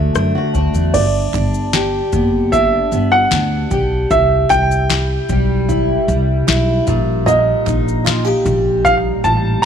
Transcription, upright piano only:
0.94 D5
2.52 E5
3.12 F#5
4.11 E5
4.50 G5
7.26 D#5
8.85 F5
9.24 A5

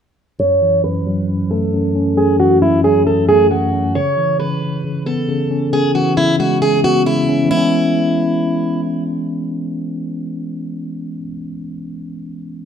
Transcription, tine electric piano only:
0.40 F#2
0.62 E3
0.84 F#2
1.06 F#3
1.29 F#2
1.51 A3
1.73 F#2
1.95 C#4
2.18 F#2
2.40 E3
2.62 F#2
2.84 F#3
3.06 F#2
3.29 A3
3.51 F#2
3.73 C#4
3.95 C#3
4.18 E3
4.40 C#3
4.84 C#3
5.06 B3
5.29 C#3
5.51 C#4
5.73 C#3
5.95 E3
6.17 C#3
6.40 G#3
6.62 C#3
6.84 B3
7.06 C#3
7.29 C#4
7.45 E3
7.49 G#3
7.53 B3
7.57 C#4

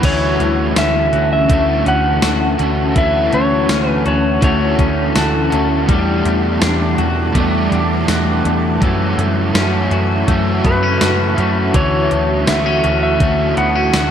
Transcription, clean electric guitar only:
Already playing: B3 E4 F#4
0.03 E3
0.40 A3
0.76 C#4
1.13 F#4
1.50 A3
1.86 C#4
2.23 F#4
2.60 A3
2.96 E3
3.33 A3
3.70 C#4
4.06 F#4
4.42 A3
4.79 C#4
5.16 F#4
5.52 A3
5.88 G3
6.25 A3
6.62 D4
6.98 F#4
7.35 A3
7.72 D4
8.08 F#4
8.45 A3
8.81 E3
9.18 A3
9.55 C#4
9.92 F#4
10.28 A3
10.65 B3
10.83 C#4
11.01 F#4
11.37 A3
11.74 E3
12.11 A3
12.47 B3
12.66 C#4
12.84 F#4
13.21 A3
13.57 B3
13.75 C#4
13.94 F#4

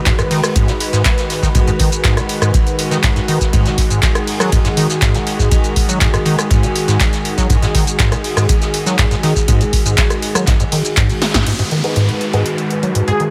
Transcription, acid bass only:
0.06 G#2
0.19 G#2
0.31 D#3
0.56 G#2
0.68 B2
0.93 G#2
1.43 D#3
1.55 G#2
1.67 G#2
1.80 D#3
2.04 G#2
2.17 B2
2.42 G#2
2.91 D#3
3.04 G#2
3.16 G#2
3.28 D#3
3.53 G#2
3.66 B2
3.90 G#2
4.40 F#3
4.52 G#2
4.65 G#2
4.77 D#3
5.02 G#2
5.14 B2
5.39 G#2
5.89 F#3
6.01 G#2
6.13 G#2
6.26 D#3
6.51 G#2
6.63 B2
6.88 G#2
7.38 F#3
7.50 G#2
7.62 G#2
7.75 D#3
7.99 G#2
8.12 B2
8.37 G#2
8.86 F#3
8.99 G#2
9.11 G#2
9.23 D#3
9.48 G#2
9.61 B2
9.85 G#2
10.35 F#3
10.47 G#2
10.60 G#2
10.72 D#3
10.97 G#2
11.10 B2
11.34 G#2
11.47 G#2
11.59 G#2
11.72 D#3
11.96 G#2
12.09 B2
12.34 G#2
12.83 F#3
12.95 G#2
13.08 G#2
13.20 D#3

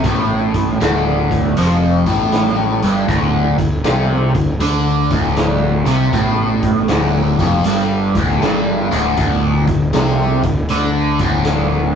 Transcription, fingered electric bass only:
0.05 A1
0.81 D1
1.58 F1
2.07 A1
2.84 G1
3.10 D1
3.59 D1
3.84 C2
4.35 D1
4.60 D2
5.11 D1
5.84 C2
6.13 A1
6.90 D1
7.40 F1
7.65 G1
8.15 D1
8.41 G1
8.93 D1
9.18 D1
9.68 D1
9.93 C2
10.44 D1
10.70 D2
11.20 D1

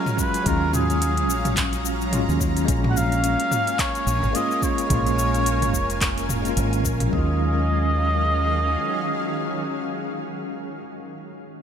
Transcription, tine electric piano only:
Already playing: F#3 G#3 C#4 F4
0.17 F#3 G#3 C#4 F4
0.41 F#3 G#3
0.47 C#4 F4
2.10 F#3 G#3 C#4 F4
2.39 F#3 G#3 C#4 F4
2.65 G#3 A#3
2.69 C#4 F4
4.33 G#3 A#3 C#4 F4
4.61 G#3 A#3 C#4 F4
4.87 G#3 A#3
4.92 C#4 F4
6.42 G#3 A#3
6.47 C#4 F4
7.07 F#3
7.11 G#3 C#4
7.18 F4

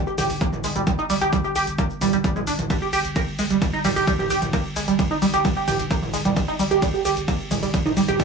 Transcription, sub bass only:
0.07 G1
0.18 G1
0.30 G1
0.53 G1
0.64 G1
0.76 G1
0.99 G1
1.10 G1
1.21 G1
1.44 G1
1.55 G1
1.67 G1
1.90 G1
2.01 G1
2.13 G1
2.36 G1
2.47 G1
2.59 G1
2.82 G1
2.93 G1
3.05 G1
3.27 G1
3.39 G1
3.50 G1
3.73 G1
3.84 G1
3.96 G1
4.19 G1
4.30 G1
4.42 G1
4.65 G1
4.76 G1
4.88 G1
5.11 G1
5.22 G1
5.34 G1
5.57 G1
5.68 G1
5.79 G1
6.02 G1
6.14 G1
6.25 G1
6.48 G1
6.59 G1
6.71 G1
6.94 G1
7.05 G1
7.17 G1
7.40 G1
7.51 G1
7.63 G1
7.86 G1
7.97 G1
8.08 G1

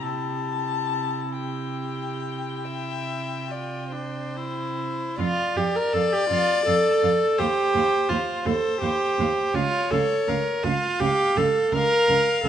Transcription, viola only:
0.04 E4
3.50 F4
3.92 D4
4.36 E4
5.20 F4
5.57 G4
5.75 A#4
5.93 A4
6.13 G4
6.30 F4
6.66 A4
7.39 G4
8.09 F4
8.46 A4
8.81 G4
9.55 F4
9.91 A4
10.28 A#4
10.63 F4
11.00 G4
11.37 A4
11.73 A#4
12.44 A4

